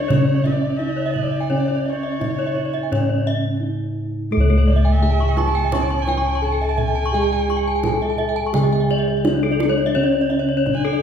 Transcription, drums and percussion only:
0.10 kendang high, kendang low
0.46 kendang slap, kendang high
0.80 kendang slap
1.16 kendang slap, kendang low
1.68 kendang slap
1.85 kendang slap
2.21 kendang slap, kendang high, kendang low
2.39 kendang slap
2.57 kendang slap
2.74 kendang slap
2.92 kendang low
4.50 kendang slap
4.67 kendang slap
5.02 kendang slap
5.19 kendang slap
5.37 kendang slap, kendang high
5.72 kendang high, kendang low
6.07 kendang slap, kendang high
6.43 kendang slap
6.78 kendang slap, kendang low
7.31 kendang slap
7.49 kendang slap
7.83 kendang slap, kendang high, kendang low
8.01 kendang slap
8.19 kendang slap
8.54 kendang low
8.90 kendang slap
9.25 kendang slap, kendang high
9.60 kendang slap, kendang high
10.13 kendang slap
10.31 kendang slap
10.67 kendang slap, kendang low
10.85 kendang slap

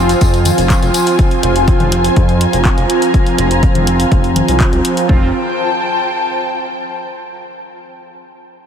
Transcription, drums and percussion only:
0.09 closed hi-hat, tambourine
0.21 kick, closed hi-hat, tambourine
0.34 closed hi-hat, tambourine
0.45 closed hi-hat, tambourine, low conga
0.58 closed hi-hat, tambourine
0.70 kick, clap, closed hi-hat, tambourine
0.82 closed hi-hat, tambourine
0.94 closed hi-hat, tambourine
1.06 closed hi-hat, tambourine
1.19 kick, closed hi-hat
1.31 closed hi-hat
1.43 closed hi-hat
1.56 closed hi-hat
1.68 kick, closed hi-hat
1.80 closed hi-hat, low conga
1.92 closed hi-hat
2.04 closed hi-hat
2.17 kick, closed hi-hat
2.29 closed hi-hat
2.41 closed hi-hat
2.53 closed hi-hat
2.65 kick, clap, closed hi-hat
2.78 closed hi-hat
2.90 closed hi-hat
3.02 closed hi-hat
3.14 kick, closed hi-hat
3.27 closed hi-hat
3.38 closed hi-hat
3.51 closed hi-hat
3.63 kick, closed hi-hat
3.75 closed hi-hat, low conga
3.87 closed hi-hat
4.00 closed hi-hat
4.12 kick, closed hi-hat
4.24 closed hi-hat
4.36 closed hi-hat, low conga
4.48 closed hi-hat
4.60 kick, clap, closed hi-hat
4.73 closed hi-hat
4.85 closed hi-hat
4.97 closed hi-hat
5.09 kick

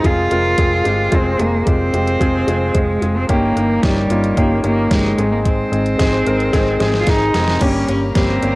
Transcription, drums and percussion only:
0.04 kick, closed hi-hat
0.31 closed hi-hat
0.58 kick, closed hi-hat
0.85 closed hi-hat
1.12 kick, closed hi-hat
1.39 closed hi-hat
1.67 kick, closed hi-hat
1.94 closed hi-hat
2.07 closed hi-hat
2.21 kick, closed hi-hat
2.48 closed hi-hat
2.75 kick, closed hi-hat
3.02 closed hi-hat
3.29 kick, closed hi-hat
3.57 closed hi-hat
3.83 kick, snare, closed hi-hat
4.10 closed hi-hat
4.24 closed hi-hat
4.37 kick, closed hi-hat
4.64 closed hi-hat
4.91 kick, snare, closed hi-hat
5.18 closed hi-hat
5.45 kick, closed hi-hat
5.73 closed hi-hat
5.86 closed hi-hat
5.99 kick, snare, closed hi-hat
6.27 closed hi-hat
6.40 closed hi-hat
6.53 kick, snare, closed hi-hat
6.80 snare, closed hi-hat
6.94 snare
7.07 kick, snare, closed hi-hat
7.34 snare, closed hi-hat
7.48 snare
7.61 kick, closed hi-hat, crash
7.89 closed hi-hat
8.15 kick, snare, closed hi-hat
8.43 closed hi-hat

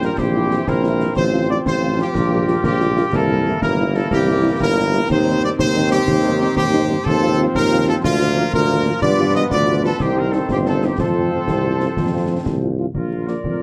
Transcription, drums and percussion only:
0.02 snare
0.18 concert bass drum, snare
0.51 snare
0.68 concert bass drum, snare
0.84 snare
1.00 snare
1.17 concert bass drum, snare, crash
1.66 concert bass drum, snare
1.99 snare
2.15 concert bass drum, snare
2.48 snare
2.64 concert bass drum, snare
2.80 snare
2.97 snare
3.13 concert bass drum, snare
3.62 concert bass drum, snare
3.95 snare
4.11 concert bass drum, snare
4.60 concert bass drum, snare
5.10 concert bass drum, snare, crash
5.59 concert bass drum, snare
5.92 snare
6.08 concert bass drum, snare
6.41 snare
6.57 concert bass drum, snare
6.73 snare
6.90 snare
7.06 concert bass drum, snare
7.55 concert bass drum, snare
7.88 snare
8.04 concert bass drum, snare
8.37 snare
8.53 concert bass drum, snare
8.70 snare
8.86 snare
9.02 concert bass drum, snare, crash
9.51 concert bass drum, snare
9.84 snare
10.00 concert bass drum, snare
10.33 snare
10.49 concert bass drum, snare
10.66 snare
10.82 snare
10.98 concert bass drum, snare
11.48 concert bass drum, snare
11.80 snare
11.97 concert bass drum, snare
12.46 concert bass drum, snare
12.95 concert bass drum
13.28 snare
13.44 concert bass drum

